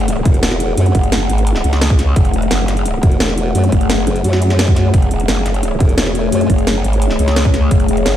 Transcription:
0.00 0.24 F#1 loud
0.00 8.17 A3 medium
0.00 8.17 G#4 medium
0.00 4.91 F#5 medium
0.00 sub drop medium
0.08 closed hi-hat loud
0.25 0.76 E1 loud
0.25 kick loud
0.25 closed hi-hat medium
0.34 closed hi-hat soft
0.43 snare loud
0.43 closed hi-hat loud
0.51 snare soft
0.60 closed hi-hat medium
0.77 0.93 F#2 loud
0.77 closed hi-hat loud
0.86 closed hi-hat soft
0.95 1.28 F#1 medium
0.95 kick medium
0.95 closed hi-hat medium
1.03 closed hi-hat soft
1.12 snare loud
1.12 closed hi-hat loud
1.30 1.63 G#1 loud
1.30 closed hi-hat medium
1.38 closed hi-hat soft
1.47 closed hi-hat medium
1.56 snare medium
1.64 2.15 C#2 loud
1.64 closed hi-hat medium
1.73 snare medium
1.73 closed hi-hat soft
1.81 snare loud
1.81 closed hi-hat medium
1.90 kick loud
1.99 snare soft
1.99 closed hi-hat medium
2.16 2.32 F#1 loud
2.16 kick loud
2.16 closed hi-hat medium
2.25 closed hi-hat soft
2.34 2.50 E1 loud
2.34 closed hi-hat medium
2.42 closed hi-hat soft
2.51 3.02 F#1 loud
2.51 snare loud
2.51 closed hi-hat medium
2.68 snare soft
2.68 closed hi-hat medium
2.77 closed hi-hat soft
2.86 closed hi-hat medium
3.03 3.54 E1 loud
3.03 kick loud
3.03 closed hi-hat medium
3.12 closed hi-hat soft
3.20 snare loud
3.20 closed hi-hat medium
3.29 snare soft
3.38 closed hi-hat medium
3.55 3.71 F#2 loud
3.55 closed hi-hat medium
3.64 closed hi-hat soft
3.72 4.06 F#1 medium
3.72 kick medium
3.72 closed hi-hat medium
3.81 closed hi-hat soft
3.90 snare loud
3.90 closed hi-hat medium
4.07 4.23 F#1 loud
4.07 closed hi-hat medium
4.16 closed hi-hat soft
4.24 4.92 F#2 loud
4.24 closed hi-hat medium
4.33 snare medium
4.42 closed hi-hat medium
4.50 snare soft
4.50 closed hi-hat soft
4.59 snare loud
4.59 closed hi-hat medium
4.68 kick loud
4.76 snare soft
4.76 closed hi-hat medium
4.94 5.10 F#1 loud
4.94 8.17 C#5 medium
4.94 kick loud
4.94 closed hi-hat medium
5.02 closed hi-hat soft
5.11 5.27 E1 medium
5.11 closed hi-hat medium
5.20 closed hi-hat soft
5.28 5.79 F#1 loud
5.28 snare loud
5.28 closed hi-hat medium
5.46 snare soft
5.46 closed hi-hat medium
5.54 closed hi-hat soft
5.63 closed hi-hat medium
5.80 6.31 E1 loud
5.80 kick loud
5.80 closed hi-hat medium
5.89 closed hi-hat soft
5.98 snare loud
5.98 closed hi-hat medium
6.06 snare soft
6.15 closed hi-hat medium
6.32 6.48 F#2 loud
6.32 closed hi-hat medium
6.41 closed hi-hat soft
6.50 6.83 F#1 loud
6.50 kick medium
6.50 closed hi-hat medium
6.58 closed hi-hat soft
6.67 snare loud
6.67 closed hi-hat medium
6.84 7.18 G#1 loud
6.84 closed hi-hat medium
6.93 closed hi-hat soft
7.02 closed hi-hat medium
7.10 snare medium
7.19 7.70 C#2 loud
7.19 closed hi-hat medium
7.28 snare soft
7.28 closed hi-hat soft
7.36 snare loud
7.36 closed hi-hat medium
7.45 kick loud
7.54 snare soft
7.54 closed hi-hat medium
7.71 7.87 F#1 loud
7.71 kick loud
7.71 closed hi-hat loud
7.80 closed hi-hat soft
7.88 8.04 E1 loud
7.88 closed hi-hat medium
7.97 closed hi-hat soft
8.06 8.17 F#1 loud
8.06 snare loud
8.06 closed hi-hat loud

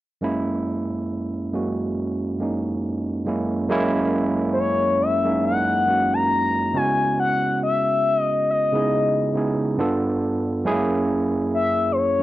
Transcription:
0.21 1.38 F#2 medium
0.21 1.38 G#3 medium
0.21 1.39 A#3 medium
0.21 1.39 C#4 medium
0.21 1.40 E4 loud
1.52 2.30 F#2 medium
1.52 2.30 G#3 medium
1.52 2.31 A#3 medium
1.52 2.31 C#4 medium
1.52 2.31 F#4 medium
2.40 3.24 F#2 medium
2.40 3.25 G#3 medium
2.40 3.26 A#3 medium
2.40 3.27 C#4 medium
2.40 3.28 D#4 medium
3.26 3.65 F#2 medium
3.26 3.65 G#3 medium
3.26 3.66 A#3 medium
3.26 3.66 C#4 medium
3.26 3.66 E4 medium
3.69 5.03 F#2 loud
3.69 5.03 G#3 medium
3.69 5.04 A#3 loud
3.69 5.04 C#4 loud
3.69 5.04 E4 loud
4.53 4.61 C5 medium
4.59 5.03 C#5 medium
5.02 5.45 E5 medium
5.24 5.80 F#2 medium
5.24 5.80 G#3 medium
5.24 5.81 A#3 medium
5.24 5.81 C#4 medium
5.24 5.81 D#4 medium
5.45 6.15 F#5 loud
5.87 6.74 F#2 medium
5.87 6.73 G#3 soft
5.87 6.75 A#3 medium
5.87 6.74 C#4 soft
5.87 6.75 F#4 medium
6.14 6.78 A#5 loud
6.74 8.29 C#3 medium
6.74 8.29 G#3 medium
6.74 8.30 B3 medium
6.74 8.30 C#4 medium
6.74 8.30 E4 medium
6.74 8.31 F#4 medium
6.74 7.19 G#5 medium
7.20 7.59 F#5 medium
7.63 8.19 E5 loud
8.19 8.51 D#5 loud
8.51 9.36 D#5 medium
8.73 9.28 C#3 medium
8.73 9.28 G#3 medium
8.73 9.29 B3 medium
8.73 9.29 D#4 medium
8.73 9.29 E4 medium
8.73 9.29 G#4 medium
9.34 9.78 C#3 medium
9.34 9.79 G#3 medium
9.34 9.77 B3 medium
9.34 9.79 D#4 medium
9.34 9.79 E4 medium
9.34 9.80 G#4 medium
9.78 10.56 G2 medium
9.78 10.56 B3 medium
9.78 10.56 D4 medium
9.78 10.57 F4 medium
9.78 10.57 A4 loud
10.65 11.99 F#2 loud
10.65 10.73 G#3 medium
10.65 11.99 C#4 loud
10.65 12.00 E4 loud
10.65 12.00 G#4 loud
10.72 12.02 A#3 loud
11.54 11.93 E5 medium
11.92 11.99 C5 medium
11.98 12.23 C#5 medium
12.20 12.23 F#2 medium

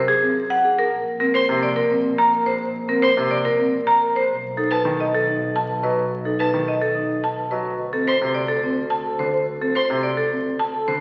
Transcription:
0.00 0.77 F#2 medium
0.00 0.13 C5 medium
0.08 0.27 G#4 medium
0.22 0.41 C4 medium
0.50 0.69 F#5 medium
0.64 0.83 G#4 medium
0.79 0.97 A#4 medium
0.92 4.14 A#1 medium
1.20 1.39 C4 medium
1.20 1.39 A#4 medium
1.34 1.53 C5 medium
1.34 1.45 C6 medium
1.49 1.67 C3 medium
1.63 1.81 D5 medium
1.76 1.95 A#4 medium
1.91 2.09 C4 medium
2.18 2.37 A#5 medium
2.33 2.51 A#4 medium
2.46 2.65 C5 medium
2.89 3.07 C4 medium
2.89 3.07 A#4 medium
3.02 3.21 C5 medium
3.02 3.13 C6 medium
3.17 3.35 C3 medium
3.31 3.49 D5 medium
3.45 3.63 A#4 medium
3.59 3.77 C4 medium
3.87 4.05 A#5 medium
4.01 4.19 A#4 medium
4.15 4.33 C5 medium
4.15 4.34 C5 medium
4.29 7.50 B1 medium
4.57 4.75 D#4 medium
4.57 4.75 A4 medium
4.71 4.89 B4 medium
4.71 4.81 A5 medium
4.85 5.03 D#3 medium
5.00 5.18 D#5 medium
5.14 5.32 A4 medium
5.27 5.45 D#4 soft
5.56 5.74 A5 medium
5.69 5.87 B4 medium
5.83 6.01 F#3 medium
5.83 6.02 B4 medium
5.83 6.01 D#5 medium
6.25 6.44 D#4 medium
6.25 6.44 A4 soft
6.39 6.58 B4 medium
6.39 6.50 A5 medium
6.54 6.72 D#3 soft
6.68 6.86 D#5 medium
6.81 7.00 A4 medium
6.95 7.14 D#4 soft
7.24 7.42 A5 medium
7.37 7.56 B4 medium
7.51 7.70 F#3 soft
7.51 7.70 B4 soft
7.51 7.70 D#5 medium
7.65 10.87 D2 medium
7.93 8.12 C4 medium
7.93 8.12 A4 soft
8.07 8.26 C5 medium
8.07 8.18 C6 medium
8.21 8.40 C3 medium
8.35 8.53 D5 medium
8.48 8.67 A4 medium
8.64 8.82 C4 medium
8.90 9.09 A5 medium
9.06 9.24 A4 medium
9.19 9.38 D3 soft
9.19 9.38 C5 medium
9.61 9.80 C4 medium
9.61 9.80 A4 medium
9.75 9.94 C5 medium
9.75 9.86 C6 medium
9.90 10.08 C3 medium
10.03 10.22 D5 medium
10.17 10.36 A4 medium
10.32 10.50 C4 soft
10.59 10.78 A5 medium
10.74 10.92 A4 medium
10.88 11.00 D3 medium
10.88 11.00 C5 medium

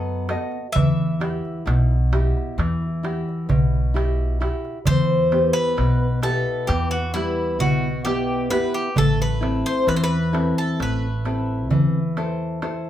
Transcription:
0.00 0.35 F#2 medium
0.00 0.27 F#3 medium
0.00 0.57 B3 soft
0.00 0.28 A4 medium
0.00 0.83 C5 medium
0.00 0.28 D#5 medium
0.29 0.66 F#4 soft
0.29 0.66 A4 soft
0.29 0.66 D#5 medium
0.29 darbuka tek medium
0.52 darbuka tek soft
0.72 1.40 E2 medium
0.72 1.64 E3 medium
0.72 3.90 E5 medium
0.72 darbuka dum loud
0.99 darbuka tek soft
1.20 1.94 E4 soft
1.20 1.94 F#4 soft
1.20 1.94 G4 soft
1.20 darbuka tek medium
1.45 darbuka tek soft
1.66 2.31 B1 loud
1.66 2.55 B2 medium
1.66 darbuka tek medium
1.91 darbuka tek soft
2.12 2.86 E4 soft
2.12 2.86 F#4 soft
2.12 2.86 G4 medium
2.12 darbuka tek medium
2.37 darbuka tek soft
2.58 3.22 E2 medium
2.58 3.47 E3 medium
2.58 darbuka tek medium
2.82 darbuka tek soft
3.03 3.77 E4 soft
3.03 3.77 F#4 soft
3.03 3.77 G4 medium
3.03 darbuka tek medium
3.29 darbuka tek soft
3.49 4.46 B1 medium
3.49 4.38 B2 medium
3.49 darbuka dum medium
3.74 darbuka tek soft
3.94 4.39 E4 medium
3.94 4.40 F#4 soft
3.94 4.40 G4 medium
3.94 darbuka tek medium
4.40 4.77 E4 soft
4.40 4.78 F#4 soft
4.40 4.78 G4 medium
4.40 darbuka tek medium
4.65 darbuka tek soft
4.85 5.51 E2 loud
4.85 5.75 E3 medium
4.85 5.53 C5 loud
4.85 darbuka dum medium
5.32 6.05 B3 soft
5.32 6.05 E4 soft
5.32 6.05 G4 medium
5.32 darbuka tek medium
5.53 6.19 B4 loud
5.77 6.42 B1 medium
5.77 6.66 B2 medium
5.77 darbuka tek medium
6.22 6.96 B3 medium
6.22 6.96 E4 soft
6.22 6.96 G4 medium
6.22 6.66 A4 medium
6.22 darbuka tek medium
6.67 7.60 E2 medium
6.67 7.58 E3 medium
6.67 6.90 G4 medium
6.67 darbuka tek medium
6.91 7.13 F#4 medium
7.14 7.88 G3 medium
7.14 7.87 B3 soft
7.14 7.57 E4 medium
7.14 7.88 E4 soft
7.14 darbuka tek medium
7.59 8.56 B1 loud
7.59 8.48 B2 medium
7.59 8.04 F#4 medium
7.59 darbuka dum medium
8.05 8.49 B3 medium
8.05 8.50 E4 soft
8.05 8.48 G4 medium
8.05 8.50 G4 medium
8.05 darbuka tek medium
8.50 8.87 B3 soft
8.50 8.88 E4 soft
8.50 8.88 G4 medium
8.50 8.72 B4 medium
8.50 darbuka tek medium
8.73 8.96 G4 medium
8.73 darbuka tek soft
8.96 9.61 A1 medium
8.96 9.86 A3 medium
8.96 9.21 A4 loud
8.96 darbuka dum medium
9.22 9.64 B4 medium
9.41 10.16 C4 medium
9.41 10.15 E4 soft
9.41 10.15 A4 soft
9.41 darbuka tek medium
9.66 9.88 C5 loud
9.87 10.52 E2 medium
9.87 10.76 E3 medium
9.87 9.95 B4 medium
9.87 darbuka tek medium
9.96 10.03 C5 medium
10.04 10.54 B4 loud
10.33 11.07 C4 medium
10.33 11.06 E4 medium
10.33 11.06 A4 soft
10.33 darbuka tek medium
10.58 10.79 A4 medium
10.79 11.70 A1 medium
10.79 11.68 A3 medium
10.79 11.80 B4 medium
10.79 darbuka tek medium
11.25 11.99 C4 medium
11.25 11.98 E4 medium
11.25 11.99 A4 soft
11.25 darbuka tek medium
11.70 12.66 E2 loud
11.70 12.59 E3 medium
11.70 darbuka dum medium
12.17 12.61 E4 medium
12.17 12.61 A4 soft
12.17 12.62 C5 medium
12.17 darbuka tek medium
12.62 12.90 E4 soft
12.62 12.90 A4 soft
12.62 12.90 C5 medium
12.62 darbuka tek medium
12.85 darbuka tek soft

